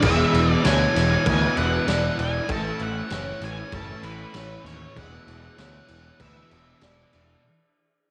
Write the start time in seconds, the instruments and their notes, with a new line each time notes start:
Already playing: ambient pad E3 E4 B4
0.02 picked electric bass E1, clean electric guitar E2 B2 E3 G#3 D4 E4 G#4, distorted electric guitar E2 B2 E3, ambient pad E5, lead electric guitar E5, kick, crash
0.32 picked electric bass E1, distorted electric guitar B2 E3, crash
0.53 lead electric guitar D5
0.63 picked electric bass D2, distorted electric guitar E2 B2 E3, clean electric guitar E3 G#3 D4 C#5, lead electric guitar G#5, snare, crash
0.67 clean electric guitar E4
0.94 picked electric bass E1, distorted electric guitar B2 E3, snare, crash
1.25 picked electric bass D2, clean electric guitar E2 B2 E3 G#3 D4 E4 B4, lead electric guitar G#5, kick, crash
1.56 picked electric bass E1, clean electric guitar E3 G#3 D4 E4, lead electric guitar F#5, crash
1.86 picked electric bass E1, distorted electric guitar E2 B2 E3, clean electric guitar E3 G#3 D4 E4 D5, snare, crash
2.17 picked electric bass E1, distorted electric guitar B2 E3, lead electric guitar G#5, crash
2.47 picked electric bass A1, distorted electric guitar A2 E3 A3, clean electric guitar A2 E3 C#4 A4, ambient pad A3 C#5, kick, crash
2.52 clean electric guitar E4, lead electric guitar A5
2.78 picked electric bass A1, distorted electric guitar E3 A3, crash
2.83 lead electric guitar F#5
3.09 picked electric bass F#1, distorted electric guitar A2 E3 A3, clean electric guitar E3 C#4 C#5, snare, crash
3.14 clean electric guitar E4
3.40 picked electric bass A1, distorted electric guitar E3 A3, snare, crash
3.44 lead electric guitar G#5
3.72 picked electric bass F#1, clean electric guitar A2 E3 C#4 E4 A4, lead electric guitar A5, kick, crash
4.03 picked electric bass A1, clean electric guitar C#4 E4, lead electric guitar B4, crash
4.33 picked electric bass A1, distorted electric guitar A2 E3 A3, clean electric guitar E3 C#4 C#5, snare, crash
4.37 clean electric guitar E4
4.63 picked electric bass D#2, distorted electric guitar E3 A3, lead electric guitar C#5, snare, crash
4.94 picked electric bass E1, distorted electric guitar E2 B2 E3, clean electric guitar E2 B2 E3 G#3 D4 E4 G#4, ambient pad E3 D4 G#4 E5, lead electric guitar F#5, kick, crash
5.27 picked electric bass E1, distorted electric guitar B2 E3, crash
5.57 picked electric bass D2, distorted electric guitar E2 B2 E3, clean electric guitar E3 G#3 D4 E4 C#5, snare, crash
5.88 picked electric bass E1, distorted electric guitar B2 E3, crash
6.19 picked electric bass D2, clean electric guitar E2 B2 E3 G#3 D4 E4 B4, lead electric guitar E5, kick, crash
6.51 picked electric bass E1, clean electric guitar E3 G#3 D4 E4, crash
6.80 picked electric bass E1, distorted electric guitar E2 B2 E3, clean electric guitar E3 G#3 D5, snare, crash
6.84 clean electric guitar D4 E4
7.13 picked electric bass E1, distorted electric guitar B2 E3, crash